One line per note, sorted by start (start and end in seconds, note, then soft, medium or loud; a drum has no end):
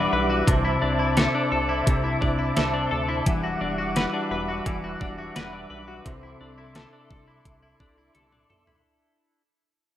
0.00 0.85 E3 medium
0.00 0.44 G3 medium
0.00 0.68 D4 medium
0.00 0.29 F#4 medium
0.00 0.12 B4 medium
0.00 8.80 E5 medium
0.00 0.44 F#5 medium
0.00 8.80 D6 medium
0.13 0.43 B1 medium
0.13 0.54 B4 medium
0.30 0.54 F#4 medium
0.47 0.78 C2 loud
0.47 1.85 C3 medium
0.47 3.23 C5 medium
0.47 3.23 A5 medium
0.47 kick loud
0.47 closed hi-hat medium
0.65 0.99 E4 medium
0.82 1.28 C2 medium
0.82 1.34 D4 medium
0.99 1.68 E4 medium
1.17 1.51 A4 medium
1.17 snare loud
1.17 closed hi-hat medium
1.35 2.21 D4 medium
1.52 1.83 C2 medium
1.52 2.55 A4 medium
1.69 2.04 E4 medium
1.87 2.18 C2 loud
1.87 3.33 C3 medium
1.87 kick medium
1.87 closed hi-hat medium
2.04 2.38 E4 medium
2.21 2.52 C2 medium
2.21 2.73 D4 medium
2.21 kick medium
2.39 3.08 E4 medium
2.57 2.88 C2 loud
2.57 2.90 A4 medium
2.57 snare loud
2.57 closed hi-hat medium
2.74 3.61 D4 medium
2.91 3.22 D2 medium
2.91 3.33 A4 medium
3.09 3.43 E4 medium
3.26 3.57 E1 loud
3.26 4.66 E3 medium
3.26 6.03 G3 medium
3.26 6.03 F#5 medium
3.26 kick loud
3.26 closed hi-hat medium
3.44 3.77 F#4 soft
3.61 4.07 E1 medium
3.61 4.13 D4 medium
3.78 4.47 F#4 medium
3.96 4.30 B4 medium
3.96 snare loud
3.96 closed hi-hat medium
4.14 5.00 D4 medium
4.31 4.62 E1 medium
4.31 5.35 B4 medium
4.48 4.83 F#4 soft
4.66 4.97 E1 loud
4.66 6.44 E3 medium
4.66 kick medium
4.66 closed hi-hat medium
4.84 5.17 F#4 medium
5.01 5.32 E1 medium
5.01 5.52 D4 medium
5.01 kick medium
5.18 5.87 F#4 medium
5.36 5.66 E1 medium
5.36 5.69 B4 medium
5.36 snare loud
5.36 closed hi-hat medium
5.53 6.26 D4 soft
5.70 6.01 B1 medium
5.70 6.12 B4 medium
5.88 6.12 F#4 medium
6.05 6.36 C2 loud
6.05 7.83 C3 medium
6.05 8.82 A4 medium
6.05 8.82 C6 soft
6.05 kick medium
6.05 closed hi-hat medium
6.23 6.57 E4 soft
6.41 6.87 C2 medium
6.41 6.92 D4 soft
6.58 7.27 E4 medium
6.75 7.10 A4 medium
6.75 snare medium
6.75 closed hi-hat medium
6.93 7.80 D4 medium
7.10 7.41 C2 medium
7.10 8.14 A4 soft
7.10 kick medium
7.28 7.62 E4 soft
7.45 7.76 C2 medium
7.45 kick medium
7.45 closed hi-hat medium
7.63 7.97 E4 soft
7.80 8.10 C2 medium
7.80 8.32 D4 soft
7.80 kick medium
7.98 8.67 E4 medium
8.15 8.46 C2 medium
8.15 8.49 A4 medium
8.15 closed hi-hat medium
8.15 high tom soft
8.32 9.41 D4 soft
8.32 mid tom soft
8.50 8.80 B1 medium
8.50 9.41 A4 medium
8.50 mid tom medium
8.67 9.41 E4 soft
8.67 floor tom medium